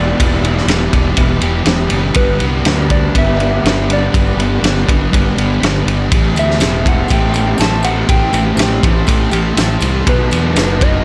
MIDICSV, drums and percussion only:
0, 0, Header, 1, 2, 480
1, 0, Start_track
1, 0, Tempo, 493827
1, 190, Time_signature, 4, 2, 24, 8
1, 10735, End_track
2, 0, Start_track
2, 0, Title_t, "Drums"
2, 193, Note_on_c, 9, 36, 97
2, 194, Note_on_c, 9, 51, 102
2, 290, Note_off_c, 9, 36, 0
2, 291, Note_off_c, 9, 51, 0
2, 432, Note_on_c, 9, 51, 58
2, 529, Note_off_c, 9, 51, 0
2, 563, Note_on_c, 9, 38, 33
2, 660, Note_off_c, 9, 38, 0
2, 663, Note_on_c, 9, 51, 82
2, 675, Note_on_c, 9, 38, 90
2, 760, Note_off_c, 9, 51, 0
2, 772, Note_off_c, 9, 38, 0
2, 903, Note_on_c, 9, 51, 71
2, 905, Note_on_c, 9, 36, 87
2, 1001, Note_off_c, 9, 51, 0
2, 1002, Note_off_c, 9, 36, 0
2, 1133, Note_on_c, 9, 51, 90
2, 1142, Note_on_c, 9, 36, 76
2, 1231, Note_off_c, 9, 51, 0
2, 1239, Note_off_c, 9, 36, 0
2, 1375, Note_on_c, 9, 51, 63
2, 1472, Note_off_c, 9, 51, 0
2, 1609, Note_on_c, 9, 51, 72
2, 1620, Note_on_c, 9, 38, 96
2, 1706, Note_off_c, 9, 51, 0
2, 1718, Note_off_c, 9, 38, 0
2, 1844, Note_on_c, 9, 51, 74
2, 1941, Note_off_c, 9, 51, 0
2, 2083, Note_on_c, 9, 51, 85
2, 2096, Note_on_c, 9, 36, 98
2, 2181, Note_off_c, 9, 51, 0
2, 2194, Note_off_c, 9, 36, 0
2, 2332, Note_on_c, 9, 51, 59
2, 2429, Note_off_c, 9, 51, 0
2, 2576, Note_on_c, 9, 51, 84
2, 2587, Note_on_c, 9, 38, 94
2, 2673, Note_off_c, 9, 51, 0
2, 2685, Note_off_c, 9, 38, 0
2, 2818, Note_on_c, 9, 51, 66
2, 2821, Note_on_c, 9, 36, 82
2, 2915, Note_off_c, 9, 51, 0
2, 2918, Note_off_c, 9, 36, 0
2, 3062, Note_on_c, 9, 36, 86
2, 3062, Note_on_c, 9, 51, 83
2, 3159, Note_off_c, 9, 36, 0
2, 3160, Note_off_c, 9, 51, 0
2, 3305, Note_on_c, 9, 51, 52
2, 3402, Note_off_c, 9, 51, 0
2, 3552, Note_on_c, 9, 51, 69
2, 3564, Note_on_c, 9, 38, 101
2, 3649, Note_off_c, 9, 51, 0
2, 3661, Note_off_c, 9, 38, 0
2, 3788, Note_on_c, 9, 51, 72
2, 3885, Note_off_c, 9, 51, 0
2, 4026, Note_on_c, 9, 36, 108
2, 4028, Note_on_c, 9, 51, 85
2, 4123, Note_off_c, 9, 36, 0
2, 4125, Note_off_c, 9, 51, 0
2, 4273, Note_on_c, 9, 51, 62
2, 4370, Note_off_c, 9, 51, 0
2, 4508, Note_on_c, 9, 51, 87
2, 4520, Note_on_c, 9, 38, 93
2, 4605, Note_off_c, 9, 51, 0
2, 4617, Note_off_c, 9, 38, 0
2, 4749, Note_on_c, 9, 36, 89
2, 4753, Note_on_c, 9, 51, 71
2, 4846, Note_off_c, 9, 36, 0
2, 4850, Note_off_c, 9, 51, 0
2, 4989, Note_on_c, 9, 36, 78
2, 4995, Note_on_c, 9, 51, 85
2, 5087, Note_off_c, 9, 36, 0
2, 5093, Note_off_c, 9, 51, 0
2, 5231, Note_on_c, 9, 51, 62
2, 5328, Note_off_c, 9, 51, 0
2, 5473, Note_on_c, 9, 51, 77
2, 5485, Note_on_c, 9, 38, 98
2, 5571, Note_off_c, 9, 51, 0
2, 5582, Note_off_c, 9, 38, 0
2, 5714, Note_on_c, 9, 51, 68
2, 5811, Note_off_c, 9, 51, 0
2, 5944, Note_on_c, 9, 51, 100
2, 5946, Note_on_c, 9, 36, 113
2, 6041, Note_off_c, 9, 51, 0
2, 6044, Note_off_c, 9, 36, 0
2, 6183, Note_on_c, 9, 54, 62
2, 6193, Note_on_c, 9, 51, 59
2, 6280, Note_off_c, 9, 54, 0
2, 6290, Note_off_c, 9, 51, 0
2, 6322, Note_on_c, 9, 38, 35
2, 6417, Note_on_c, 9, 54, 81
2, 6419, Note_off_c, 9, 38, 0
2, 6422, Note_on_c, 9, 51, 74
2, 6434, Note_on_c, 9, 38, 100
2, 6514, Note_off_c, 9, 54, 0
2, 6519, Note_off_c, 9, 51, 0
2, 6531, Note_off_c, 9, 38, 0
2, 6667, Note_on_c, 9, 36, 92
2, 6673, Note_on_c, 9, 51, 65
2, 6764, Note_off_c, 9, 36, 0
2, 6770, Note_off_c, 9, 51, 0
2, 6884, Note_on_c, 9, 54, 61
2, 6906, Note_on_c, 9, 36, 81
2, 6908, Note_on_c, 9, 51, 86
2, 6981, Note_off_c, 9, 54, 0
2, 7003, Note_off_c, 9, 36, 0
2, 7005, Note_off_c, 9, 51, 0
2, 7133, Note_on_c, 9, 54, 71
2, 7149, Note_on_c, 9, 51, 54
2, 7230, Note_off_c, 9, 54, 0
2, 7246, Note_off_c, 9, 51, 0
2, 7366, Note_on_c, 9, 54, 95
2, 7392, Note_on_c, 9, 51, 73
2, 7403, Note_on_c, 9, 38, 99
2, 7463, Note_off_c, 9, 54, 0
2, 7489, Note_off_c, 9, 51, 0
2, 7500, Note_off_c, 9, 38, 0
2, 7606, Note_on_c, 9, 54, 69
2, 7623, Note_on_c, 9, 51, 70
2, 7704, Note_off_c, 9, 54, 0
2, 7721, Note_off_c, 9, 51, 0
2, 7862, Note_on_c, 9, 36, 112
2, 7863, Note_on_c, 9, 51, 88
2, 7959, Note_off_c, 9, 36, 0
2, 7961, Note_off_c, 9, 51, 0
2, 8095, Note_on_c, 9, 54, 65
2, 8104, Note_on_c, 9, 51, 62
2, 8192, Note_off_c, 9, 54, 0
2, 8201, Note_off_c, 9, 51, 0
2, 8330, Note_on_c, 9, 54, 90
2, 8350, Note_on_c, 9, 51, 83
2, 8362, Note_on_c, 9, 38, 90
2, 8427, Note_off_c, 9, 54, 0
2, 8447, Note_off_c, 9, 51, 0
2, 8459, Note_off_c, 9, 38, 0
2, 8586, Note_on_c, 9, 36, 94
2, 8590, Note_on_c, 9, 51, 73
2, 8684, Note_off_c, 9, 36, 0
2, 8688, Note_off_c, 9, 51, 0
2, 8814, Note_on_c, 9, 54, 70
2, 8825, Note_on_c, 9, 36, 87
2, 8829, Note_on_c, 9, 51, 91
2, 8911, Note_off_c, 9, 54, 0
2, 8922, Note_off_c, 9, 36, 0
2, 8926, Note_off_c, 9, 51, 0
2, 9052, Note_on_c, 9, 54, 69
2, 9068, Note_on_c, 9, 51, 67
2, 9150, Note_off_c, 9, 54, 0
2, 9165, Note_off_c, 9, 51, 0
2, 9304, Note_on_c, 9, 51, 80
2, 9307, Note_on_c, 9, 54, 96
2, 9315, Note_on_c, 9, 38, 90
2, 9401, Note_off_c, 9, 51, 0
2, 9405, Note_off_c, 9, 54, 0
2, 9412, Note_off_c, 9, 38, 0
2, 9531, Note_on_c, 9, 54, 64
2, 9546, Note_on_c, 9, 51, 69
2, 9628, Note_off_c, 9, 54, 0
2, 9643, Note_off_c, 9, 51, 0
2, 9787, Note_on_c, 9, 36, 120
2, 9787, Note_on_c, 9, 51, 93
2, 9884, Note_off_c, 9, 36, 0
2, 9885, Note_off_c, 9, 51, 0
2, 10023, Note_on_c, 9, 54, 62
2, 10035, Note_on_c, 9, 51, 65
2, 10120, Note_off_c, 9, 54, 0
2, 10132, Note_off_c, 9, 51, 0
2, 10265, Note_on_c, 9, 54, 82
2, 10267, Note_on_c, 9, 51, 73
2, 10279, Note_on_c, 9, 38, 95
2, 10362, Note_off_c, 9, 54, 0
2, 10364, Note_off_c, 9, 51, 0
2, 10376, Note_off_c, 9, 38, 0
2, 10510, Note_on_c, 9, 36, 91
2, 10514, Note_on_c, 9, 51, 72
2, 10607, Note_off_c, 9, 36, 0
2, 10611, Note_off_c, 9, 51, 0
2, 10735, End_track
0, 0, End_of_file